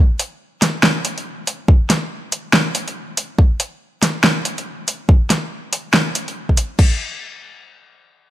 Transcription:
0.19 closed hi-hat medium
0.62 snare medium
0.62 closed hi-hat medium
0.83 snare loud
1.05 closed hi-hat medium
1.18 closed hi-hat soft
1.47 closed hi-hat medium
1.68 kick loud
1.90 snare medium
1.90 closed hi-hat medium
2.32 closed hi-hat medium
2.53 snare loud
2.75 closed hi-hat medium
2.88 closed hi-hat soft
3.17 closed hi-hat medium
3.39 kick loud
3.60 closed hi-hat medium
4.03 snare medium
4.03 closed hi-hat medium
4.24 snare loud
4.45 closed hi-hat medium
4.58 closed hi-hat soft
4.88 closed hi-hat medium
5.09 kick loud
5.30 snare medium
5.30 closed hi-hat medium
5.73 closed hi-hat medium
5.94 snare loud
6.15 closed hi-hat medium
6.28 closed hi-hat soft
6.49 kick medium
6.57 closed hi-hat medium
6.79 kick loud
6.79 crash medium

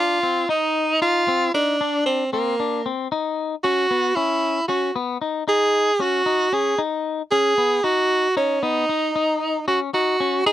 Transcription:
0.00 0.18 D4 medium
0.00 0.46 F4 loud
0.23 0.44 C4 medium
0.49 0.92 D#4 medium
0.49 0.98 D#4 medium
1.02 1.23 D#4 medium
1.02 1.51 F4 medium
1.28 1.49 C4 medium
1.54 2.03 D4 medium
1.54 1.76 D#4 medium
1.81 2.23 D4 medium
2.06 2.31 C4 medium
2.33 2.88 A#3 medium
2.33 2.54 C4 medium
2.60 2.81 D4 medium
2.86 3.07 C4 medium
3.12 3.55 D#4 medium
3.64 3.86 C#4 medium
3.64 4.17 F#4 medium
3.91 4.12 B3 medium
4.15 4.59 C#4 medium
4.15 4.67 E4 medium
4.68 4.91 C#4 medium
4.68 4.93 F#4 medium
4.96 5.17 B3 medium
5.22 5.43 D#4 medium
5.48 5.90 D#4 medium
5.48 6.03 G#4 loud
6.00 6.21 C#4 medium
6.00 6.55 F#4 medium
6.26 6.48 D#4 medium
6.53 6.74 C#4 medium
6.53 6.79 G#4 medium
6.78 7.22 D#4 medium
7.31 7.53 C#4 medium
7.31 7.85 G#4 loud
7.58 7.79 B3 medium
7.84 8.27 D#4 medium
7.84 8.37 F#4 medium
8.37 8.65 C#4 medium
8.37 8.58 D#4 medium
8.63 8.84 B3 medium
8.63 9.67 D#4 medium
8.89 9.11 D#4 medium
9.16 9.59 D#4 medium
9.68 9.89 C#4 medium
9.68 9.80 F#4 medium
9.94 10.16 D#4 medium
9.94 10.43 F#4 medium
10.20 10.42 C#4 medium
10.46 10.53 D#4 medium
10.46 10.53 G#4 loud

